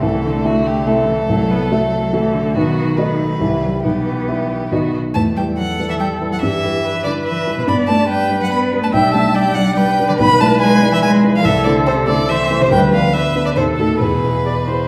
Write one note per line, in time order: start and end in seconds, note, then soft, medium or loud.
0.03 0.44 C2 medium
0.03 0.28 E3 medium
0.03 1.26 A3 medium
0.03 0.47 A4 soft
0.27 0.89 D3 medium
0.44 0.83 A3 soft
0.44 0.83 E4 soft
0.44 0.68 F#4 medium
0.44 0.83 E5 soft
0.67 0.89 G4 medium
0.87 1.09 C3 medium
0.87 1.25 A3 soft
0.87 1.25 E4 soft
0.87 2.55 A4 medium
0.87 1.25 E5 soft
1.08 1.28 E3 medium
1.29 1.70 C2 medium
1.29 1.70 F#3 medium
1.29 1.52 A3 medium
1.50 1.72 B3 medium
1.71 2.15 F#3 medium
1.71 2.12 A3 soft
1.71 2.09 A3 soft
1.71 2.09 F#4 soft
1.71 2.10 E5 soft
2.13 2.36 E3 medium
2.13 2.57 A3 soft
2.13 2.51 A3 soft
2.13 2.51 F#4 soft
2.13 2.52 E5 soft
2.34 2.56 D3 soft
2.55 2.97 B1 soft
2.55 3.43 D#3 medium
2.55 2.96 B3 soft
2.55 2.99 F#4 soft
2.97 3.37 A3 soft
2.97 3.19 B3 soft
2.97 3.37 F#4 soft
2.97 3.83 B4 soft
2.97 3.37 D#5 soft
3.18 3.41 A3 soft
3.39 3.83 C2 soft
3.39 3.63 E3 soft
3.39 3.84 G3 soft
3.39 3.80 G3 soft
3.39 3.80 E4 soft
3.39 3.81 E5 soft
3.63 3.71 F#3 soft
3.83 4.26 B1 soft
3.83 4.71 E3 soft
3.83 4.69 B3 soft
3.83 4.74 G4 soft
4.28 4.67 G3 soft
4.28 4.68 E4 soft
4.28 4.68 E5 soft
4.70 5.14 B1 soft
4.70 4.79 D#3 soft
4.70 5.11 F#3 soft
4.70 4.93 B3 soft
4.70 5.11 F#4 soft
4.70 4.95 F#4 soft
4.70 5.12 D#5 soft
5.14 5.36 E2 soft
5.14 5.35 A3 medium
5.14 5.22 A5 medium
5.37 5.45 G3 soft
5.37 5.75 G3 soft
5.37 5.76 E4 soft
5.37 5.76 B4 soft
5.37 5.45 G5 soft
5.56 5.66 F#3 medium
5.56 6.44 A4 medium
5.56 5.89 F#5 medium
5.79 6.17 G3 soft
5.79 6.17 E4 soft
5.79 6.17 B4 soft
5.89 5.98 E3 soft
5.89 5.94 E5 soft
5.99 6.07 G3 medium
5.99 6.08 G5 medium
6.21 6.40 G3 soft
6.21 6.40 E4 soft
6.21 6.40 B4 soft
6.31 6.36 F#3 soft
6.31 6.42 F#5 medium
6.42 6.63 G2 soft
6.42 7.04 E3 medium
6.42 6.86 G4 soft
6.42 7.04 E5 medium
6.64 7.01 G3 soft
6.64 7.02 E4 soft
6.64 7.02 B4 soft
6.84 7.69 B4 medium
7.04 7.14 D3 soft
7.04 7.43 G3 soft
7.04 7.43 E4 soft
7.04 7.43 B4 soft
7.04 7.12 D5 medium
7.25 7.57 E3 medium
7.25 7.56 E5 medium
7.47 7.66 G3 soft
7.47 7.66 E4 soft
7.47 7.66 B4 soft
7.58 7.62 B2 soft
7.58 7.63 B4 medium
7.67 7.88 G2 soft
7.67 7.91 B3 medium
7.67 8.08 D5 medium
7.67 7.76 B5 medium
7.88 8.26 G3 soft
7.88 8.11 A3 medium
7.88 8.27 D4 soft
7.88 8.27 D5 soft
7.88 8.08 A5 medium
8.09 8.42 G3 medium
8.09 8.94 B4 medium
8.09 8.40 G5 medium
8.30 8.68 G3 soft
8.30 8.68 D4 soft
8.30 8.69 D5 soft
8.40 8.50 F#3 soft
8.40 8.50 F#5 medium
8.51 8.83 B3 medium
8.51 8.59 B5 medium
8.72 8.91 G3 soft
8.72 8.91 D4 soft
8.72 8.92 D5 soft
8.82 8.93 A3 soft
8.82 8.88 A5 medium
8.92 9.13 B1 soft
8.92 9.15 G3 medium
8.92 9.37 E5 medium
8.92 9.13 G5 medium
9.13 9.52 G3 soft
9.13 9.35 A3 medium
9.13 9.52 D4 soft
9.13 9.53 D5 soft
9.13 9.36 A5 medium
9.35 9.58 G3 medium
9.35 9.78 D5 medium
9.35 9.56 G5 medium
9.55 9.76 F#3 medium
9.55 9.94 G3 soft
9.55 9.94 D4 soft
9.55 9.94 D5 soft
9.55 9.75 F#5 medium
9.75 9.84 G3 medium
9.75 11.44 B4 medium
9.75 10.07 G5 medium
9.99 10.17 G3 soft
9.99 10.17 D4 soft
9.99 10.18 D5 soft
10.09 10.13 D3 medium
10.09 10.13 D5 medium
10.19 10.40 B1 medium
10.19 10.27 B3 medium
10.19 10.42 B5 medium
10.40 10.78 G#3 soft
10.40 10.49 A3 medium
10.40 10.78 E4 soft
10.40 10.78 D5 soft
10.40 10.60 A5 medium
10.61 10.92 G#3 medium
10.61 10.92 G#5 medium
10.82 11.20 G#3 soft
10.82 11.20 E4 soft
10.82 11.20 D5 soft
10.92 10.97 E3 medium
10.92 11.02 E5 medium
11.03 11.34 G#3 medium
11.03 11.11 G#5 medium
11.23 11.43 G#3 soft
11.23 11.43 E4 soft
11.23 11.43 D5 soft
11.36 11.47 F3 medium
11.36 11.47 F5 medium
11.45 11.65 C2 medium
11.45 11.66 E3 medium
11.45 12.31 A4 medium
11.45 11.64 E5 medium
11.65 11.89 D3 medium
11.65 12.04 A3 soft
11.65 12.04 E4 soft
11.65 12.05 C5 medium
11.65 11.73 D5 medium
11.86 12.11 C3 medium
11.86 11.94 C5 medium
12.07 12.30 D3 medium
12.07 12.47 A3 soft
12.07 12.47 E4 soft
12.07 12.47 C5 soft
12.07 12.31 D5 medium
12.30 12.63 E3 medium
12.30 12.72 C5 medium
12.30 12.64 E5 medium
12.51 12.70 A3 soft
12.51 12.70 E4 soft
12.51 12.70 C5 soft
12.61 12.75 C3 medium
12.61 12.71 C5 medium
12.71 12.92 D2 medium
12.71 12.93 G3 medium
12.71 13.13 B4 medium
12.71 12.79 G5 medium
12.93 13.13 F3 medium
12.93 13.31 B3 soft
12.93 13.31 D4 soft
12.93 13.32 B4 soft
12.93 13.15 F5 medium
13.14 13.22 E3 medium
13.14 13.59 B4 medium
13.14 13.45 E5 medium
13.35 13.55 B3 soft
13.35 13.55 D4 soft
13.35 13.55 B4 soft
13.45 13.56 D3 soft
13.45 13.50 D5 medium
13.56 13.78 D#2 soft
13.56 13.64 C3 medium
13.56 14.03 A4 medium
13.56 13.64 C5 medium
13.77 13.99 A2 medium
13.77 13.99 D#4 soft
13.77 13.99 F#4 soft
13.77 13.99 A4 medium
13.77 13.99 A4 soft
13.99 14.23 E2 soft
13.99 14.88 B2 soft
13.99 14.41 G#4 soft
13.99 14.88 B4 medium
14.23 14.63 B3 soft
14.23 14.64 E4 soft
14.23 14.64 G#4 soft
14.45 14.53 D5 medium
14.66 14.88 B3 soft
14.66 14.88 E4 soft
14.66 14.88 G#4 soft
14.66 14.88 C5 soft